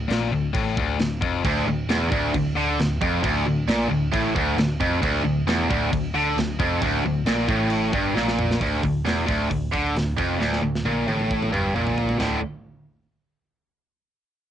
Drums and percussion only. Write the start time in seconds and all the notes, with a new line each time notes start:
0.10 snare, crash
0.54 kick, crash
0.77 kick
0.99 snare, crash
1.22 kick
1.45 kick, crash
1.89 snare, crash
2.12 kick
2.34 kick, crash
2.80 snare, crash
3.02 kick
3.24 kick, crash
3.68 snare, crash
4.14 kick, crash
4.36 kick
4.58 snare, crash
4.81 kick
5.03 kick, crash
5.48 snare, crash
5.71 kick
5.93 kick, crash
6.38 snare, crash
6.60 kick
6.82 kick, crash
7.26 snare, crash
7.49 kick
7.70 crash
7.93 kick
8.17 snare
8.28 snare
8.39 mid tom
8.51 snare
8.61 kick, open hi-hat
8.83 kick, open hi-hat
9.06 snare, open hi-hat
9.29 kick, open hi-hat
9.51 kick, open hi-hat
9.74 kick, open hi-hat
9.96 snare, open hi-hat
10.18 kick, open hi-hat
10.41 snare
10.53 snare
10.75 snare
10.86 high tom
11.08 high tom
11.19 mid tom
11.31 kick
11.42 mid tom
11.54 mid tom
11.76 mid tom
11.87 floor tom
11.98 floor tom
12.09 floor tom
12.20 snare, floor tom, crash